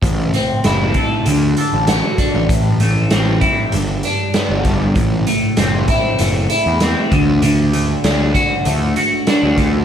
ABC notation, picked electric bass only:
X:1
M:4/4
L:1/16
Q:1/4=97
K:Ador
V:1 name="Picked electric bass" clef=bass
A,,,2 z2 F,,,2 z2 D,,2 z A,,,2 z2 A,,, | A,,,4 A,,,2 z2 G,,,2 z3 G,,,3 | A,,,2 z2 F,,,2 z2 F,,,2 z E,,2 z D,,2- | D,,4 D,,2 z2 D,,2 z3 D,,3 |]